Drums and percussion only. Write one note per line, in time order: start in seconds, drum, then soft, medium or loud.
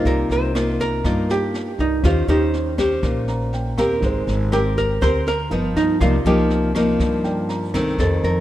0.05 kick medium
0.05 snare soft
0.30 snare soft
0.55 cross-stick medium
0.55 snare soft
0.80 kick soft
0.80 snare soft
1.04 kick medium
1.04 cross-stick medium
1.04 snare soft
1.29 snare soft
1.54 snare soft
1.79 kick soft
1.79 snare soft
2.04 kick medium
2.04 cross-stick medium
2.04 snare soft
2.28 snare soft
2.53 snare soft
2.78 kick soft
2.78 cross-stick medium
2.78 snare soft
3.03 kick medium
3.03 snare soft
3.28 snare soft
3.53 snare soft
3.77 kick soft
3.77 cross-stick soft
3.77 snare soft
4.02 kick medium
4.02 snare soft
4.28 snare soft
4.52 cross-stick medium
4.52 snare soft
4.77 kick soft
4.77 snare soft
5.02 kick medium
5.02 cross-stick medium
5.02 snare soft
5.27 snare soft
5.51 snare soft
5.76 kick soft
5.76 snare soft
6.01 kick medium
6.01 cross-stick medium
6.01 snare soft
6.25 snare soft
6.50 snare soft
6.75 kick soft
6.75 cross-stick medium
6.75 snare soft
7.00 kick medium
7.00 snare soft
7.24 snare soft
7.49 snare soft
7.74 kick soft
7.74 cross-stick medium
7.74 snare soft
7.98 kick medium
7.98 snare soft
8.23 snare soft